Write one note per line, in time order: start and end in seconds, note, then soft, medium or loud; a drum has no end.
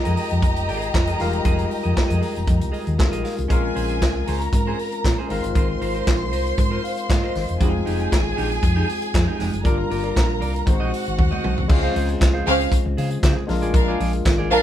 0.00 1.15 G#3 medium
0.00 1.15 D#4 medium
0.00 1.16 F4 medium
0.00 1.16 G4 medium
0.00 3.21 G4 medium
0.00 1.16 A#4 medium
0.00 3.21 D#5 medium
0.00 3.21 A#5 medium
0.05 0.15 F2 medium
0.05 0.16 G#4 medium
0.05 0.16 A#4 medium
0.05 0.17 D#5 medium
0.05 closed hi-hat soft
0.17 0.33 G#4 medium
0.17 0.31 A#4 medium
0.17 0.30 D#5 medium
0.17 open hi-hat medium
0.31 0.40 F2 medium
0.31 muted clean electric guitar stroke medium
0.31 closed hi-hat soft
0.42 0.70 F1 medium
0.42 muted clean electric guitar stroke soft
0.42 kick loud
0.42 closed hi-hat medium
0.56 muted clean electric guitar stroke soft
0.56 closed hi-hat soft
0.68 0.88 G#1 loud
0.68 0.89 G#4 medium
0.68 0.81 A#4 medium
0.68 0.81 D#5 medium
0.68 open hi-hat medium
0.82 muted clean electric guitar stroke soft
0.82 closed hi-hat soft
0.94 1.13 F1 medium
0.94 kick loud
0.94 snare loud
0.94 clap medium
1.07 1.18 G#4 medium
1.07 1.19 A#4 medium
1.07 1.21 D#5 medium
1.07 closed hi-hat soft
1.18 1.39 E1 medium
1.18 1.25 G3 medium
1.18 2.95 D#4 medium
1.18 2.96 F4 medium
1.18 2.96 G4 medium
1.18 1.36 G#4 medium
1.18 1.33 A#4 medium
1.18 2.96 A#4 medium
1.18 1.33 F5 medium
1.18 snare soft
1.18 open hi-hat medium
1.24 2.97 G#3 medium
1.33 muted clean electric guitar stroke medium
1.33 closed hi-hat soft
1.45 1.64 F1 loud
1.45 1.65 G#4 medium
1.45 1.57 A#4 medium
1.45 1.57 D#5 medium
1.45 kick loud
1.45 closed hi-hat medium
1.58 muted clean electric guitar stroke soft
1.58 closed hi-hat soft
1.70 muted clean electric guitar stroke soft
1.70 open hi-hat medium
1.83 1.94 F2 medium
1.83 1.94 G#4 soft
1.83 1.94 A#4 medium
1.83 1.94 D#5 medium
1.83 closed hi-hat soft
1.97 kick loud
1.97 snare loud
1.97 clap medium
2.08 2.19 F2 medium
2.08 2.20 G#4 medium
2.08 2.20 A#4 medium
2.08 2.21 D#5 medium
2.08 closed hi-hat soft
2.21 2.38 G#4 medium
2.21 2.34 A#4 medium
2.21 2.33 D#5 medium
2.21 open hi-hat medium
2.34 2.45 F1 medium
2.34 muted clean electric guitar stroke soft
2.34 closed hi-hat soft
2.47 2.58 F2 medium
2.47 muted clean electric guitar stroke soft
2.47 kick loud
2.47 closed hi-hat medium
2.60 2.70 C2 medium
2.60 muted clean electric guitar stroke soft
2.60 closed hi-hat medium
2.72 2.93 G#4 medium
2.72 2.85 A#4 medium
2.72 2.84 D#5 medium
2.72 open hi-hat soft
2.85 2.96 D#2 medium
2.85 muted clean electric guitar stroke soft
2.85 closed hi-hat soft
2.98 3.09 C2 medium
2.98 3.48 G#3 soft
2.98 3.50 D#4 medium
2.98 3.50 F4 soft
2.98 3.51 G4 soft
2.98 3.06 G#4 soft
2.98 muted clean electric guitar stroke soft
2.98 kick loud
2.98 snare loud
2.98 clap medium
3.06 3.51 A#4 medium
3.12 3.22 A#1 medium
3.12 3.22 G#4 medium
3.12 3.23 A#4 medium
3.12 3.24 D#5 medium
3.12 closed hi-hat medium
3.23 3.40 G#4 medium
3.23 3.37 A#4 medium
3.23 3.37 F5 medium
3.23 snare soft
3.23 open hi-hat medium
3.37 3.47 C2 medium
3.37 muted clean electric guitar stroke soft
3.37 closed hi-hat soft
3.48 3.69 A#1 medium
3.48 5.26 G#3 medium
3.48 5.26 C4 medium
3.48 3.70 C#4 medium
3.48 5.26 C#4 medium
3.48 5.27 F4 medium
3.48 3.63 G#4 medium
3.48 4.26 G#4 medium
3.48 5.27 A#4 medium
3.48 3.62 C5 medium
3.48 4.26 G#5 medium
3.48 kick loud
3.48 closed hi-hat medium
3.63 muted clean electric guitar stroke soft
3.75 4.02 A#1 medium
3.75 3.90 C#4 medium
3.75 3.89 G#4 medium
3.75 3.88 C5 medium
3.75 open hi-hat medium
3.89 4.01 C#4 soft
3.89 4.01 G#4 soft
3.89 4.02 C5 medium
3.89 closed hi-hat soft
4.02 4.21 C2 medium
4.02 muted clean electric guitar stroke soft
4.02 kick loud
4.02 snare loud
4.02 clap medium
4.02 closed hi-hat medium
4.16 muted clean electric guitar stroke soft
4.27 4.46 C#2 medium
4.27 4.48 C#4 medium
4.27 4.42 G#4 medium
4.27 5.28 A#4 medium
4.27 4.41 C5 medium
4.27 5.28 A#5 medium
4.27 open hi-hat medium
4.41 muted clean electric guitar stroke soft
4.41 closed hi-hat soft
4.53 4.72 G#2 medium
4.53 muted clean electric guitar stroke soft
4.53 kick loud
4.53 closed hi-hat medium
4.67 4.78 C#4 medium
4.67 4.79 G#4 medium
4.67 4.79 C5 medium
4.79 muted clean electric guitar stroke soft
4.79 open hi-hat medium
4.92 muted clean electric guitar stroke soft
4.92 closed hi-hat soft
5.04 5.15 A#2 medium
5.04 muted clean electric guitar stroke soft
5.04 kick loud
5.04 snare loud
5.04 clap medium
5.04 closed hi-hat medium
5.18 5.30 C#4 medium
5.18 5.31 G#4 medium
5.18 5.31 C5 medium
5.28 5.40 G#1 medium
5.28 7.30 G#3 medium
5.28 7.31 C4 medium
5.28 7.31 D#4 medium
5.28 5.46 F4 medium
5.28 7.31 F4 medium
5.28 5.45 A#4 medium
5.28 7.32 A#4 medium
5.28 7.57 C5 medium
5.28 5.44 C5 medium
5.28 7.57 C6 medium
5.28 open hi-hat medium
5.44 5.52 G1 medium
5.44 muted clean electric guitar stroke soft
5.44 closed hi-hat soft
5.55 5.74 G#1 loud
5.55 5.76 F4 medium
5.55 5.69 A#4 medium
5.55 5.68 C5 medium
5.55 kick loud
5.55 closed hi-hat medium
5.69 muted clean electric guitar stroke soft
5.81 6.00 G#1 medium
5.81 5.95 F4 medium
5.81 5.94 A#4 medium
5.81 5.94 C5 medium
5.81 open hi-hat medium
5.94 6.06 F4 medium
5.94 6.06 A#4 medium
5.94 6.07 C5 medium
5.94 closed hi-hat soft
6.07 6.33 A#1 medium
6.07 muted clean electric guitar stroke soft
6.07 kick loud
6.07 snare loud
6.07 clap medium
6.07 closed hi-hat medium
6.21 muted clean electric guitar stroke soft
6.32 6.51 C2 medium
6.32 6.52 F4 medium
6.32 6.46 A#4 medium
6.32 6.45 C5 medium
6.32 open hi-hat medium
6.46 muted clean electric guitar stroke soft
6.46 closed hi-hat soft
6.58 6.77 G#2 medium
6.58 muted clean electric guitar stroke medium
6.58 kick loud
6.58 closed hi-hat medium
6.70 6.82 F4 medium
6.70 6.83 A#4 medium
6.70 6.83 C5 medium
6.84 7.08 F5 medium
6.84 muted clean electric guitar stroke soft
6.84 open hi-hat medium
6.97 muted clean electric guitar stroke soft
6.97 closed hi-hat soft
7.08 7.20 G#2 medium
7.08 7.34 D#5 medium
7.08 muted clean electric guitar stroke soft
7.08 kick loud
7.08 snare loud
7.08 clap medium
7.08 closed hi-hat medium
7.22 7.34 F4 medium
7.22 7.34 A#4 medium
7.22 7.34 C5 medium
7.35 7.45 G#1 loud
7.35 7.59 C5 medium
7.35 muted clean electric guitar stroke medium
7.35 snare soft
7.35 open hi-hat medium
7.48 7.58 E1 medium
7.48 muted clean electric guitar stroke soft
7.48 closed hi-hat soft
7.60 7.79 F1 loud
7.60 7.81 G#3 medium
7.60 9.61 G#3 medium
7.60 9.61 C4 medium
7.60 7.73 D#4 medium
7.60 9.62 D#4 medium
7.60 9.62 F4 medium
7.60 7.73 G4 medium
7.60 9.62 G#4 medium
7.60 9.62 G#5 medium
7.60 kick loud
7.60 closed hi-hat medium
7.74 muted clean electric guitar stroke medium
7.85 8.05 F1 medium
7.85 7.99 G#3 medium
7.85 7.98 D#4 medium
7.85 7.98 G4 medium
7.85 open hi-hat medium
7.99 8.10 G#3 soft
7.99 8.11 D#4 medium
7.99 8.11 G4 medium
7.99 closed hi-hat soft
8.11 8.31 G#1 medium
8.11 muted clean electric guitar stroke soft
8.11 kick loud
8.11 snare loud
8.11 clap medium
8.11 closed hi-hat medium
8.26 muted clean electric guitar stroke soft
8.37 8.56 A#1 medium
8.37 8.57 G#3 medium
8.37 8.50 D#4 medium
8.37 8.49 G4 loud
8.37 open hi-hat medium
8.51 muted clean electric guitar stroke medium
8.51 closed hi-hat soft
8.63 8.82 F2 medium
8.63 muted clean electric guitar stroke soft
8.63 kick loud
8.63 closed hi-hat medium
8.76 8.87 G#3 medium
8.76 8.88 D#4 medium
8.76 8.88 G4 medium
8.89 muted clean electric guitar stroke soft
8.89 open hi-hat medium
9.02 muted clean electric guitar stroke soft
9.02 closed hi-hat soft
9.14 9.24 F2 loud
9.14 muted clean electric guitar stroke soft
9.14 kick loud
9.14 snare loud
9.14 clap loud
9.14 closed hi-hat medium
9.27 9.38 G#3 medium
9.27 9.38 D#4 medium
9.27 9.39 G4 medium
9.39 9.50 F1 loud
9.39 9.56 G#3 medium
9.39 9.53 D#4 medium
9.39 9.51 G4 medium
9.39 snare soft
9.39 open hi-hat medium
9.53 9.62 F#1 medium
9.53 muted clean electric guitar stroke soft
9.53 closed hi-hat medium
9.63 9.84 G1 loud
9.63 10.65 G3 medium
9.63 10.65 A#3 medium
9.63 10.66 D4 medium
9.63 9.85 F4 medium
9.63 10.66 F4 medium
9.63 9.78 A#4 medium
9.63 10.66 A#4 medium
9.63 9.77 D5 loud
9.63 10.66 A#5 medium
9.63 kick loud
9.63 closed hi-hat medium
9.79 muted clean electric guitar stroke medium
9.90 10.10 G1 medium
9.90 10.03 F4 medium
9.90 10.03 A#4 medium
9.90 10.02 D5 medium
9.90 open hi-hat medium
10.04 10.14 F4 medium
10.04 10.15 A#4 medium
10.04 10.15 D5 medium
10.04 closed hi-hat soft
10.15 10.42 A#1 medium
10.15 muted clean electric guitar stroke soft
10.15 kick loud
10.15 snare loud
10.15 clap medium
10.15 closed hi-hat medium
10.28 muted clean electric guitar stroke soft
10.40 10.61 C2 medium
10.40 10.61 F4 medium
10.40 10.54 A#4 medium
10.40 10.53 D5 medium
10.40 open hi-hat medium
10.55 muted clean electric guitar stroke medium
10.55 closed hi-hat soft
10.66 10.77 G#1 loud
10.66 11.67 G#3 medium
10.66 11.67 C4 medium
10.66 11.68 D#4 medium
10.66 11.68 F#4 medium
10.66 11.68 C5 medium
10.66 11.68 F#5 loud
10.66 muted clean electric guitar stroke medium
10.66 kick loud
10.66 closed hi-hat medium
10.80 10.90 A#1 medium
10.80 10.91 F#4 medium
10.80 10.91 C5 medium
10.80 10.92 D#5 loud
10.92 muted clean electric guitar stroke soft
10.92 open hi-hat medium
11.05 11.16 G#1 medium
11.05 muted clean electric guitar stroke soft
11.05 closed hi-hat soft
11.18 11.29 D#2 medium
11.18 muted clean electric guitar stroke soft
11.18 kick loud
11.18 high tom medium
11.31 11.42 F#4 medium
11.31 11.43 C5 medium
11.31 11.43 D#5 medium
11.31 mid tom medium
11.43 11.54 B1 loud
11.43 11.60 F#4 medium
11.43 11.56 C5 medium
11.43 11.55 D#5 medium
11.43 mid tom medium
11.57 11.67 C2 medium
11.57 muted clean electric guitar stroke medium
11.57 floor tom medium
11.68 11.88 C#2 loud
11.68 13.44 G#3 medium
11.68 13.44 C4 medium
11.68 13.45 C#4 medium
11.68 11.82 C#4 medium
11.68 13.45 F4 medium
11.68 11.82 C5 medium
11.68 13.46 C5 medium
11.68 11.82 F5 loud
11.68 muted clean electric guitar stroke soft
11.68 kick loud
11.68 crash loud
11.83 11.94 G#4 medium
11.83 11.94 C5 medium
11.83 11.95 F5 medium
11.95 12.14 C#2 medium
11.95 12.11 G#4 medium
11.95 12.09 C5 medium
11.95 12.08 F5 medium
11.95 open hi-hat medium
12.09 muted clean electric guitar stroke soft
12.09 closed hi-hat soft
12.21 12.40 C2 loud
12.21 muted clean electric guitar stroke soft
12.21 kick loud
12.21 snare loud
12.21 clap loud
12.21 closed hi-hat medium
12.34 12.44 G#4 medium
12.34 12.45 C5 medium
12.34 12.46 F5 medium
12.46 12.65 C#2 loud
12.46 12.69 C#4 loud
12.46 12.62 G#4 medium
12.46 12.59 C5 medium
12.46 12.68 C5 loud
12.46 12.68 F5 loud
12.46 12.59 G5 medium
12.46 open hi-hat medium
12.59 muted clean electric guitar stroke soft
12.59 closed hi-hat soft
12.72 kick loud
12.72 closed hi-hat medium
12.86 12.94 C#2 loud
12.86 muted clean electric guitar stroke soft
12.97 13.16 C#3 loud
12.97 13.18 G#4 medium
12.97 13.10 C5 medium
12.97 13.10 F5 medium
12.97 open hi-hat medium
13.11 muted clean electric guitar stroke soft
13.11 closed hi-hat soft
13.23 13.33 C#3 loud
13.23 13.43 G#4 medium
13.23 13.36 C5 medium
13.23 13.35 F5 medium
13.23 kick loud
13.23 snare loud
13.23 clap medium
13.23 closed hi-hat medium
13.37 muted clean electric guitar stroke medium
13.47 13.59 A#1 loud
13.47 14.62 G#3 medium
13.47 14.62 A#3 medium
13.47 14.62 D4 medium
13.47 14.62 F4 medium
13.47 14.62 A#4 medium
13.47 muted clean electric guitar stroke soft
13.47 snare soft
13.47 open hi-hat medium
13.62 13.71 A1 medium
13.62 13.73 F4 medium
13.62 13.73 G#4 medium
13.62 13.74 D5 medium
13.62 closed hi-hat medium
13.74 13.92 A#1 loud
13.74 13.86 D4 medium
13.74 13.85 A#4 loud
13.74 13.86 F5 loud
13.74 muted clean electric guitar stroke soft
13.74 kick loud
13.74 closed hi-hat medium
13.88 13.98 F4 medium
13.88 13.99 G#4 medium
13.88 14.00 D5 loud
14.00 14.18 A#1 loud
14.00 14.16 F4 medium
14.00 14.13 G#4 medium
14.00 14.12 D5 medium
14.00 open hi-hat medium
14.13 muted clean electric guitar stroke soft
14.13 closed hi-hat soft
14.25 14.51 G#1 loud
14.25 kick loud
14.25 snare loud
14.25 clap medium
14.25 closed hi-hat medium
14.38 14.49 F4 medium
14.38 14.49 G#4 medium
14.38 14.50 D5 medium
14.50 14.62 A#1 loud
14.50 14.62 D4 loud
14.50 14.62 F4 medium
14.50 14.62 G#4 medium
14.50 14.62 A#4 loud
14.50 14.62 F5 medium
14.50 14.62 F5 loud
14.50 open hi-hat medium